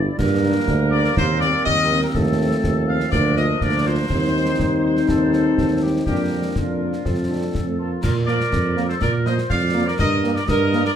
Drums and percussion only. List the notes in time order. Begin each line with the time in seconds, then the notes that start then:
0.19 concert bass drum, snare, crash
0.68 concert bass drum, snare
1.04 snare
1.17 concert bass drum, snare
1.41 snare
1.66 concert bass drum, snare
2.15 concert bass drum, snare
2.64 concert bass drum, snare
3.00 snare
3.12 concert bass drum, snare
3.37 snare
3.61 concert bass drum, snare
4.10 concert bass drum, snare, crash
4.59 concert bass drum, snare
4.97 snare
5.09 concert bass drum, snare
5.33 snare
5.58 concert bass drum, snare
6.06 concert bass drum, snare
6.56 concert bass drum, snare
6.93 snare
7.05 concert bass drum, snare
7.55 concert bass drum, snare
8.04 concert bass drum, snare, crash
8.28 snare
8.40 snare
8.53 concert bass drum, snare
8.77 snare
8.90 snare
9.02 concert bass drum, snare
9.26 snare
9.38 snare
9.50 concert bass drum, snare
9.99 concert bass drum, snare, crash
10.24 snare
10.36 snare
10.48 concert bass drum, snare
10.73 snare
10.85 snare